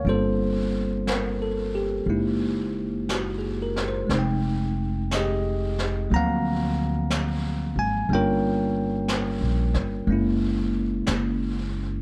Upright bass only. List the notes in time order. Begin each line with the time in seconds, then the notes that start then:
0.05 G1
2.06 F#1
4.09 F1
6.11 D2
7.76 G#1
8.09 G1
9.41 A#1
9.75 G1
10.07 F#1
11.08 F#1